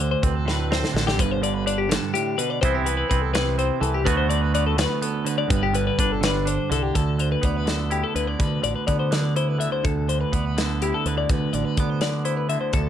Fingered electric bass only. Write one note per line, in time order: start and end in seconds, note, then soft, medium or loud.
0.00 0.14 D2 medium
0.23 0.82 D2 medium
0.94 1.20 A1 medium
1.19 1.97 G1 medium
2.63 3.02 C2 medium
3.11 3.70 C2 medium
3.81 4.06 C2 loud
4.06 4.85 D2 loud
5.50 5.90 G1 medium
5.99 6.57 G1 medium
6.71 6.90 C2 medium
6.96 7.34 D2 medium
7.43 8.02 D2 medium
8.15 8.35 D2 medium
8.39 8.59 D3 medium
8.63 8.73 A1 medium
8.88 9.67 D3 medium
9.84 10.23 D2 medium
10.33 10.91 D2 medium
11.05 11.25 D2 medium
11.29 11.49 D3 medium
11.53 11.63 A1 medium
11.77 12.56 D3 medium
12.74 12.89 D2 medium